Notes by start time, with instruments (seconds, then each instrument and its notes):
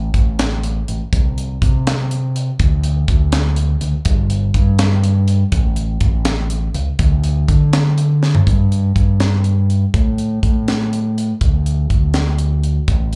0.14 fingered electric bass A1, kick, closed hi-hat
0.39 snare, closed hi-hat
0.63 closed hi-hat
0.88 fingered electric bass A1, closed hi-hat
1.13 fingered electric bass C2, kick, closed hi-hat
1.38 closed hi-hat
1.62 fingered electric bass C3, kick, closed hi-hat
1.87 snare, closed hi-hat
2.11 closed hi-hat
2.36 closed hi-hat
2.59 fingered electric bass D2, kick, closed hi-hat
2.84 closed hi-hat
3.08 fingered electric bass D2, kick, closed hi-hat
3.32 snare, closed hi-hat
3.56 closed hi-hat
3.81 fingered electric bass D2, closed hi-hat
4.05 fingered electric bass G1, kick, closed hi-hat
4.30 closed hi-hat
4.54 fingered electric bass G2, kick, closed hi-hat
4.79 snare, closed hi-hat
5.04 closed hi-hat
5.28 closed hi-hat
5.52 fingered electric bass A1, kick, closed hi-hat
5.76 closed hi-hat
6.01 fingered electric bass A1, kick, closed hi-hat
6.25 snare, closed hi-hat
6.50 closed hi-hat
6.74 fingered electric bass C#2, closed hi-hat
6.99 fingered electric bass D2, kick, closed hi-hat
7.24 closed hi-hat
7.48 fingered electric bass D3, kick, closed hi-hat
7.73 snare, closed hi-hat
7.98 closed hi-hat
8.23 snare
8.35 floor tom
8.47 fingered electric bass G2, kick, closed hi-hat
8.72 closed hi-hat
8.96 fingered electric bass G2, kick, closed hi-hat
9.20 snare, closed hi-hat
9.44 closed hi-hat
9.70 closed hi-hat
9.94 fingered electric bass A2, kick, closed hi-hat
10.18 closed hi-hat
10.43 fingered electric bass A2, kick, closed hi-hat
10.68 snare, closed hi-hat
10.93 closed hi-hat
11.18 closed hi-hat
11.41 fingered electric bass D2, kick, closed hi-hat
11.66 closed hi-hat
11.90 fingered electric bass D2, kick, closed hi-hat
12.14 snare, closed hi-hat
12.38 closed hi-hat
12.64 closed hi-hat
12.88 fingered electric bass A1, kick, closed hi-hat